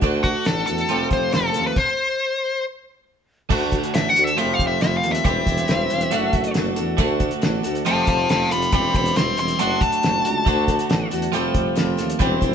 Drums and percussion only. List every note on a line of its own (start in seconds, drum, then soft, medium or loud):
0.02 kick loud
0.02 closed hi-hat soft
0.24 kick medium
0.24 closed hi-hat medium
0.45 snare loud
0.45 closed hi-hat medium
0.67 closed hi-hat medium
0.78 closed hi-hat soft
0.89 closed hi-hat medium
1.11 kick medium
1.11 closed hi-hat medium
1.32 snare medium
1.32 closed hi-hat soft
1.54 snare soft
1.54 closed hi-hat medium
1.76 kick medium
1.76 crash medium
3.50 kick loud
3.50 crash loud
3.72 kick medium
3.72 closed hi-hat medium
3.83 closed hi-hat medium
3.94 snare loud
3.94 closed hi-hat medium
4.16 closed hi-hat medium
4.27 closed hi-hat medium
4.38 closed hi-hat medium
4.59 kick medium
4.59 closed hi-hat medium
4.81 snare medium
4.81 closed hi-hat medium
5.04 closed hi-hat medium
5.15 closed hi-hat medium
5.25 kick loud
5.25 closed hi-hat medium
5.47 kick medium
5.47 closed hi-hat medium
5.58 closed hi-hat medium
5.68 snare loud
5.68 closed hi-hat medium
5.90 closed hi-hat medium
6.01 closed hi-hat medium
6.11 closed hi-hat medium
6.33 kick medium
6.33 closed hi-hat medium
6.44 closed hi-hat medium
6.54 snare medium
6.54 closed hi-hat medium
6.76 closed hi-hat medium
6.98 kick loud
6.98 closed hi-hat medium
7.20 kick medium
7.20 closed hi-hat medium
7.31 closed hi-hat medium
7.42 snare loud
7.42 closed hi-hat medium
7.64 closed hi-hat medium
7.75 closed hi-hat medium
7.86 closed hi-hat medium
8.07 kick medium
8.07 closed hi-hat medium
8.29 snare loud
8.29 closed hi-hat medium
8.51 snare soft
8.51 closed hi-hat medium
8.62 closed hi-hat medium
8.72 kick loud
8.72 closed hi-hat medium
8.95 kick medium
8.95 closed hi-hat medium
9.06 closed hi-hat medium
9.16 snare loud
9.16 closed hi-hat medium
9.37 closed hi-hat medium
9.48 closed hi-hat medium
9.59 closed hi-hat medium
9.81 kick medium
9.81 closed hi-hat medium
9.92 closed hi-hat medium
10.03 snare loud
10.03 closed hi-hat medium
10.25 closed hi-hat medium
10.46 kick loud
10.46 closed hi-hat medium
10.68 kick medium
10.68 closed hi-hat medium
10.79 closed hi-hat medium
10.90 snare loud
10.90 closed hi-hat medium
11.11 closed hi-hat medium
11.22 closed hi-hat medium
11.33 closed hi-hat medium
11.55 kick medium
11.55 closed hi-hat medium
11.76 snare medium
11.76 closed hi-hat medium
11.98 snare soft
11.98 closed hi-hat medium
12.10 closed hi-hat medium
12.20 kick loud
12.20 closed hi-hat medium
12.42 kick medium
12.42 closed hi-hat medium